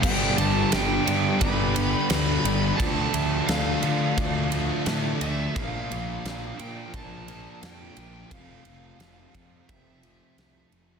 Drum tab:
CC |x-------|--------|--------|--------|
RD |-xxxxxxx|xxxxxxxx|xxxxxxxx|xxxxxxxx|
SD |--o---o-|--o---o-|--o---o-|--o---o-|
BD |o---o---|o---o---|o---o---|o--oo---|